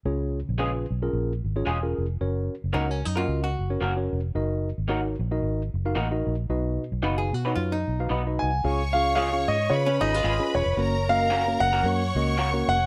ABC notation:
X:1
M:4/4
L:1/16
Q:"Swing" 1/4=112
K:Dbmix
V:1 name="Violin section"
z16 | z16 | z16 | z16 |
[dd']8 [cc']8 | [Bb]8 [dd']8 |]
V:2 name="Grand piano"
z16 | z16 | z16 | z12 z2 a2- |
a2 f2 f2 e2 d2 e4 d2- | d2 f4 g8 g2 |]
V:3 name="Tine electric piano"
[DFAd]2 z2 [DFAc]2 z [DFAB]2 z2 [DFAd] z [DFAB]2 z | [DGBd]2 z2 [DGBd]2 z [DGBe]2 z2 [DGBd] z [DGBd]2 z | [EGBe]2 z2 [EGBd]2 z [EGBe]2 z2 [EGBf] z [EGBe]2 z | [EGce]2 z2 [EGcf]2 z [EGcd]2 z2 [EGcf] z [EGce]2 z |
[DFAdf] z [DFAdf]2 z [DFAdf]2 z [DFAdf] z [DFAda]2 z [DFAda]2 z | [B,DGBd] z [B,DGBe]2 z [B,DGBd]2 z [B,DGBd] z [B,DGBe]2 z [B,DGBd]2 z |]
V:4 name="Tine electric piano" clef=bass
D,6 z8 z2 | z16 | z16 | C,6 z6 c'2 g2 |
D,6 z8 z2 | z16 |]
V:5 name="Clean electric guitar"
z4 [A,DFA] z6 z [A,DFA] z3 | z4 [B,DGB] z2 [B,DGB] z4 [B,DGB] z3 | z4 [B,EGB] z6 z [B,EGB] z3 | z4 [CEGc] z2 [CEGc] z4 [CEGc] z3 |
z4 [A,DFA] z6 z [A,DFA] z3 | z4 [B,DGB] z2 [B,DGB] z4 [B,DGB] z3 |]
V:6 name="Hollow-body jazz guitar"
z16 | z4 E D E F2 G6 z | z16 | z4 z A G2 F E6 z |
z8 z D E F4- F | z16 |]
V:7 name="Fingered electric bass" clef=bass
D,,3 B,,,3 C,,2 B,,,2 A,,,2 _F,,,2 =F,,,2 | G,,,2 z G,,, D,,2 G,,2 D,,2 G,,,2 G,,,2 F,,,2 | G,,,3 A,,,3 B,,,2 A,,,2 G,,,2 =A,,,2 B,,,2 | C,,2 z C,, G,,,2 C,2 G,,2 C,,2 C,,2 =C,,2 |
D,,6 A,,2 D,2 A,,,2 A,,, z _F,,, =F,,, | G,,,6 G,,,2 G,,2 D,,4 F,,,2 |]